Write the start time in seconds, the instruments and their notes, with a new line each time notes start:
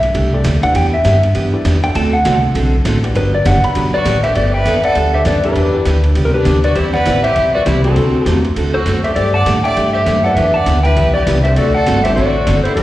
Already playing: upright bass B1
0.03 ride
0.14 upright bass C2, steel-string acoustic guitar G3 A3 D4 G4, kick, ride
0.33 upright piano A3 D4 G4 A4 D5
0.44 upright bass D2, steel-string acoustic guitar G3 A3 D4 G4, kick, snare, hi-hat pedal, ride
0.63 upright piano D4 E4 G4 B4 D5, electric slide guitar F#5, muted upright bass stroke, ride
0.74 upright bass E2, steel-string acoustic guitar E3 B3 D4 G4, electric slide guitar G5, kick, ride
0.94 electric slide guitar E5
1.04 upright bass G2, steel-string acoustic guitar E3 B3 D4 G4, kick, snare, hi-hat pedal, ride
1.23 ride
1.35 upright bass F#2, steel-string acoustic guitar E3 B3 D4 G4, kick, ride
1.53 upright piano D4 E4 G4 B4 D5
1.65 upright bass E2, steel-string acoustic guitar E3 B3 D4 G4, kick, snare, hi-hat pedal, ride
1.83 upright piano D4 F#4 A4 C5 D5, electric slide guitar G5, ride
1.95 upright bass D2, steel-string acoustic guitar D3 A3 C4 F#4 A4, electric slide guitar A5, kick, ride
2.13 electric slide guitar F#5
2.25 upright bass C2, steel-string acoustic guitar D3 A3 C4 F#4 A4, upright piano D4 F#4 A4 C5 D5, kick, snare, hi-hat pedal, ride
2.55 upright bass B1, steel-string acoustic guitar D3 A3 C4 F#4 A4, kick, ride
2.85 upright bass A1, steel-string acoustic guitar D3 A3 C4 F#4 A4, kick, snare, hi-hat pedal, ride
3.02 upright piano D4 F#4 G4 B4 D5, ride
3.15 upright bass G1, steel-string acoustic guitar D3 F#3 B3 D4 G4, electric slide guitar B4, kick, ride
3.35 electric slide guitar D5
3.44 upright bass F#1, steel-string acoustic guitar D3 F#3 B3 D4 G4, upright piano D4 F#4 G4 B4 D5, electric slide guitar F#5, kick, snare, hi-hat pedal, ride
3.64 electric slide guitar B5, muted upright bass stroke, ride
3.75 upright bass B1, steel-string acoustic guitar D3 F#3 B3 D4 G4, kick, ride
3.94 fiddle F#4, electric slide guitar B4 D5
4.05 upright bass A1, steel-string acoustic guitar D3 F#3 B3 D4 G4, kick, snare, hi-hat pedal, ride
4.23 upright piano D4 G4 A4 B4 E5, fiddle G4, electric slide guitar C5 E5, ride
4.35 upright bass G1, steel-string acoustic guitar G3 B3 D4 A4, fiddle G4, electric slide guitar B4 D5, kick, ride
4.54 fiddle B4, electric slide guitar E5 G5
4.65 upright bass E2, steel-string acoustic guitar G3 B3 D4 A4, kick, snare, hi-hat pedal, ride
4.84 fiddle A4, electric slide guitar D5 F#5, ride
4.95 upright bass D2, steel-string acoustic guitar G3 B3 D4 A4, kick, ride
5.13 upright piano D4 G4 A4 B4 D5, fiddle G4, electric slide guitar C5 E5
5.25 upright bass F#2, steel-string acoustic guitar G3 B3 D4 A4, fiddle G4, electric slide guitar B4 D5, kick, snare, hi-hat pedal, ride
5.43 upright piano D4 E4 G4 B4 E5, fiddle D4, electric slide guitar G4 B4, ride
5.55 upright bass E2, steel-string acoustic guitar E3 B3 D4 G4, kick, ride
5.73 upright piano D4 E4 G4 B4 D5
5.85 upright bass D2, steel-string acoustic guitar E3 B3 D4 G4, kick, snare, hi-hat pedal, ride
6.04 ride
6.15 upright bass C2, steel-string acoustic guitar E3 B3 D4 G4, kick, ride
6.25 fiddle C4, electric slide guitar A#4
6.34 fiddle D4, electric slide guitar G4 B4
6.45 upright bass D2, steel-string acoustic guitar E3 B3 D4 G4, kick, snare, hi-hat pedal, ride
6.64 fiddle F#4, electric slide guitar B4 D5, ride
6.76 upright bass E2, steel-string acoustic guitar E3 G3 C4 E4 B4, fiddle E4, electric slide guitar G4 C5, kick, ride
6.94 fiddle B4, electric slide guitar D5 F#5, snare
7.05 upright bass A1, steel-string acoustic guitar E3 G3 C4 E4 B4, upright piano C4 E4 G4 B4 C5, kick, snare, hi-hat pedal, ride
7.24 fiddle G4, electric slide guitar C5 E5, ride
7.36 upright bass B1, steel-string acoustic guitar E3 G3 C4 E4 B4, kick, ride
7.54 fiddle F#4, electric slide guitar B4 D5
7.66 upright bass C2, steel-string acoustic guitar E3 G3 C4 E4 B4, fiddle E4, electric slide guitar G4 C5, kick, snare, hi-hat pedal, ride
7.84 upright piano C4 D4 F#4 A4 D5, fiddle C4, electric slide guitar F#4 A4, ride
7.96 upright bass D2, steel-string acoustic guitar D3 A3 C4 F#4 A4, kick, ride
8.26 upright bass E2, steel-string acoustic guitar D3 A3 C4 F#4 A4, fiddle A#3, upright piano C4 D4 F#4 A4 C5, electric slide guitar G4, kick, snare, hi-hat pedal, ride
8.45 ride
8.56 upright bass D2, steel-string acoustic guitar D3 A3 C4 F#4 A4, kick, ride
8.74 fiddle F#4, electric slide guitar A4 C5, muted upright bass stroke
8.86 upright bass F#2, steel-string acoustic guitar D3 A3 C4 F#4 A4, kick, snare, hi-hat pedal, ride
9.04 upright piano A3 D4 G4 A4 D5, fiddle G4, electric slide guitar C5 E5, ride
9.16 upright bass G2, steel-string acoustic guitar G3 A3 D4 G4, fiddle G4, electric slide guitar A4 D5, kick, ride
9.34 fiddle D5, electric slide guitar F#5 A5
9.46 upright bass A2, steel-string acoustic guitar G3 A3 D4 G4, kick, snare, hi-hat pedal, ride
9.64 upright piano A3 D4 G4 A4 D5, fiddle D5, electric slide guitar E5 G5, ride
9.76 upright bass G2, steel-string acoustic guitar G3 A3 D4 G4, kick, ride
9.93 fiddle G4, electric slide guitar C5 E5
10.06 upright bass F#2, steel-string acoustic guitar G3 A3 D4 G4, kick, snare, hi-hat pedal, ride
10.23 upright piano B3 D4 E4 G4 B4, fiddle A4, electric slide guitar D5 F#5
10.35 upright bass E2, steel-string acoustic guitar E3 B3 D4 G4, fiddle G4, electric slide guitar B4 E5, kick, ride
10.53 fiddle D5, electric slide guitar F#5 A5
10.66 upright bass D2, steel-string acoustic guitar E3 B3 D4 G4, kick, snare, hi-hat pedal, ride
10.83 upright piano B3 D4 E4 G4 B4, fiddle B4, electric slide guitar E5 G5, ride
10.97 upright bass B1, steel-string acoustic guitar E3 B3 D4 G4, kick, ride
11.14 fiddle G4, electric slide guitar B4 D5
11.27 upright bass C2, steel-string acoustic guitar E3 B3 D4 G4, kick, snare, hi-hat pedal, ride
11.44 upright piano C4 D4 F#4 A4 D5, fiddle G4, electric slide guitar C5 E5, ride
11.56 upright bass D2, steel-string acoustic guitar D3 A3 C4 F#4 A4, fiddle F#4, electric slide guitar A4 D5, kick, ride
11.74 fiddle A4, electric slide guitar D5 F#5
11.87 upright bass G1, steel-string acoustic guitar D3 A3 C4 F#4 A4, kick, snare, hi-hat pedal, ride
12.04 upright piano C4 D4 F#4 A4 C5, fiddle G4, electric slide guitar C5 E5, ride
12.16 upright bass A1, steel-string acoustic guitar D3 A3 C4 F#4 A4, fiddle F#4, electric slide guitar A4 D5, kick
12.47 upright bass F#1, steel-string acoustic guitar D3 A3 C4 F#4 A4, kick, snare, hi-hat pedal, ride
12.64 upright piano B3 D4 F#4 G4 B4, fiddle E4, electric slide guitar A4 C5, muted upright bass stroke, ride
12.76 upright bass G1, steel-string acoustic guitar D3 F#3 B3 D4 G4, fiddle D4, electric slide guitar G4 B4, kick, ride